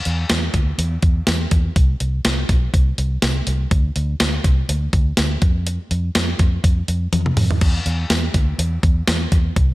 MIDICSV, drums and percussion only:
0, 0, Header, 1, 2, 480
1, 0, Start_track
1, 0, Tempo, 487805
1, 1733, Time_signature, 4, 2, 24, 8
1, 9584, End_track
2, 0, Start_track
2, 0, Title_t, "Drums"
2, 52, Note_on_c, 9, 42, 60
2, 150, Note_off_c, 9, 42, 0
2, 290, Note_on_c, 9, 42, 84
2, 290, Note_on_c, 9, 54, 58
2, 292, Note_on_c, 9, 38, 116
2, 388, Note_off_c, 9, 42, 0
2, 388, Note_off_c, 9, 54, 0
2, 391, Note_off_c, 9, 38, 0
2, 529, Note_on_c, 9, 42, 79
2, 531, Note_on_c, 9, 36, 82
2, 627, Note_off_c, 9, 42, 0
2, 629, Note_off_c, 9, 36, 0
2, 774, Note_on_c, 9, 42, 95
2, 873, Note_off_c, 9, 42, 0
2, 1009, Note_on_c, 9, 42, 72
2, 1011, Note_on_c, 9, 36, 95
2, 1107, Note_off_c, 9, 42, 0
2, 1110, Note_off_c, 9, 36, 0
2, 1248, Note_on_c, 9, 38, 105
2, 1249, Note_on_c, 9, 54, 60
2, 1250, Note_on_c, 9, 42, 95
2, 1347, Note_off_c, 9, 38, 0
2, 1347, Note_off_c, 9, 54, 0
2, 1348, Note_off_c, 9, 42, 0
2, 1489, Note_on_c, 9, 42, 80
2, 1492, Note_on_c, 9, 36, 84
2, 1587, Note_off_c, 9, 42, 0
2, 1590, Note_off_c, 9, 36, 0
2, 1732, Note_on_c, 9, 42, 92
2, 1733, Note_on_c, 9, 36, 124
2, 1830, Note_off_c, 9, 42, 0
2, 1831, Note_off_c, 9, 36, 0
2, 1971, Note_on_c, 9, 42, 62
2, 2069, Note_off_c, 9, 42, 0
2, 2211, Note_on_c, 9, 42, 85
2, 2211, Note_on_c, 9, 54, 64
2, 2213, Note_on_c, 9, 38, 110
2, 2309, Note_off_c, 9, 42, 0
2, 2309, Note_off_c, 9, 54, 0
2, 2311, Note_off_c, 9, 38, 0
2, 2451, Note_on_c, 9, 42, 84
2, 2452, Note_on_c, 9, 36, 85
2, 2549, Note_off_c, 9, 42, 0
2, 2551, Note_off_c, 9, 36, 0
2, 2693, Note_on_c, 9, 36, 101
2, 2696, Note_on_c, 9, 42, 94
2, 2792, Note_off_c, 9, 36, 0
2, 2795, Note_off_c, 9, 42, 0
2, 2934, Note_on_c, 9, 42, 75
2, 3032, Note_off_c, 9, 42, 0
2, 3172, Note_on_c, 9, 38, 99
2, 3172, Note_on_c, 9, 54, 59
2, 3173, Note_on_c, 9, 42, 88
2, 3270, Note_off_c, 9, 38, 0
2, 3270, Note_off_c, 9, 54, 0
2, 3271, Note_off_c, 9, 42, 0
2, 3412, Note_on_c, 9, 42, 81
2, 3511, Note_off_c, 9, 42, 0
2, 3653, Note_on_c, 9, 36, 125
2, 3653, Note_on_c, 9, 42, 90
2, 3751, Note_off_c, 9, 42, 0
2, 3752, Note_off_c, 9, 36, 0
2, 3894, Note_on_c, 9, 42, 63
2, 3992, Note_off_c, 9, 42, 0
2, 4132, Note_on_c, 9, 42, 84
2, 4132, Note_on_c, 9, 54, 60
2, 4134, Note_on_c, 9, 38, 107
2, 4230, Note_off_c, 9, 54, 0
2, 4231, Note_off_c, 9, 42, 0
2, 4233, Note_off_c, 9, 38, 0
2, 4373, Note_on_c, 9, 36, 85
2, 4374, Note_on_c, 9, 42, 80
2, 4471, Note_off_c, 9, 36, 0
2, 4472, Note_off_c, 9, 42, 0
2, 4616, Note_on_c, 9, 42, 96
2, 4714, Note_off_c, 9, 42, 0
2, 4851, Note_on_c, 9, 42, 78
2, 4853, Note_on_c, 9, 36, 102
2, 4950, Note_off_c, 9, 42, 0
2, 4951, Note_off_c, 9, 36, 0
2, 5088, Note_on_c, 9, 38, 98
2, 5089, Note_on_c, 9, 54, 67
2, 5090, Note_on_c, 9, 42, 98
2, 5187, Note_off_c, 9, 38, 0
2, 5187, Note_off_c, 9, 54, 0
2, 5188, Note_off_c, 9, 42, 0
2, 5331, Note_on_c, 9, 42, 80
2, 5333, Note_on_c, 9, 36, 110
2, 5429, Note_off_c, 9, 42, 0
2, 5431, Note_off_c, 9, 36, 0
2, 5575, Note_on_c, 9, 42, 84
2, 5673, Note_off_c, 9, 42, 0
2, 5815, Note_on_c, 9, 42, 63
2, 5913, Note_off_c, 9, 42, 0
2, 6051, Note_on_c, 9, 54, 62
2, 6052, Note_on_c, 9, 42, 83
2, 6054, Note_on_c, 9, 38, 108
2, 6150, Note_off_c, 9, 42, 0
2, 6150, Note_off_c, 9, 54, 0
2, 6152, Note_off_c, 9, 38, 0
2, 6291, Note_on_c, 9, 42, 75
2, 6292, Note_on_c, 9, 36, 86
2, 6389, Note_off_c, 9, 42, 0
2, 6391, Note_off_c, 9, 36, 0
2, 6533, Note_on_c, 9, 36, 93
2, 6535, Note_on_c, 9, 42, 96
2, 6631, Note_off_c, 9, 36, 0
2, 6633, Note_off_c, 9, 42, 0
2, 6772, Note_on_c, 9, 42, 73
2, 6871, Note_off_c, 9, 42, 0
2, 7013, Note_on_c, 9, 42, 93
2, 7013, Note_on_c, 9, 48, 60
2, 7111, Note_off_c, 9, 42, 0
2, 7111, Note_off_c, 9, 48, 0
2, 7144, Note_on_c, 9, 47, 63
2, 7242, Note_off_c, 9, 47, 0
2, 7250, Note_on_c, 9, 46, 77
2, 7251, Note_on_c, 9, 45, 91
2, 7349, Note_off_c, 9, 45, 0
2, 7349, Note_off_c, 9, 46, 0
2, 7386, Note_on_c, 9, 43, 95
2, 7484, Note_off_c, 9, 43, 0
2, 7491, Note_on_c, 9, 49, 80
2, 7493, Note_on_c, 9, 36, 126
2, 7590, Note_off_c, 9, 49, 0
2, 7591, Note_off_c, 9, 36, 0
2, 7733, Note_on_c, 9, 42, 56
2, 7832, Note_off_c, 9, 42, 0
2, 7970, Note_on_c, 9, 42, 81
2, 7970, Note_on_c, 9, 54, 60
2, 7972, Note_on_c, 9, 38, 111
2, 8068, Note_off_c, 9, 54, 0
2, 8069, Note_off_c, 9, 42, 0
2, 8071, Note_off_c, 9, 38, 0
2, 8209, Note_on_c, 9, 42, 82
2, 8211, Note_on_c, 9, 36, 82
2, 8308, Note_off_c, 9, 42, 0
2, 8309, Note_off_c, 9, 36, 0
2, 8453, Note_on_c, 9, 42, 95
2, 8552, Note_off_c, 9, 42, 0
2, 8691, Note_on_c, 9, 36, 100
2, 8691, Note_on_c, 9, 42, 75
2, 8789, Note_off_c, 9, 36, 0
2, 8789, Note_off_c, 9, 42, 0
2, 8930, Note_on_c, 9, 38, 103
2, 8930, Note_on_c, 9, 54, 60
2, 8931, Note_on_c, 9, 42, 95
2, 9028, Note_off_c, 9, 38, 0
2, 9029, Note_off_c, 9, 54, 0
2, 9030, Note_off_c, 9, 42, 0
2, 9170, Note_on_c, 9, 42, 77
2, 9171, Note_on_c, 9, 36, 85
2, 9269, Note_off_c, 9, 36, 0
2, 9269, Note_off_c, 9, 42, 0
2, 9411, Note_on_c, 9, 36, 125
2, 9411, Note_on_c, 9, 42, 90
2, 9509, Note_off_c, 9, 36, 0
2, 9510, Note_off_c, 9, 42, 0
2, 9584, End_track
0, 0, End_of_file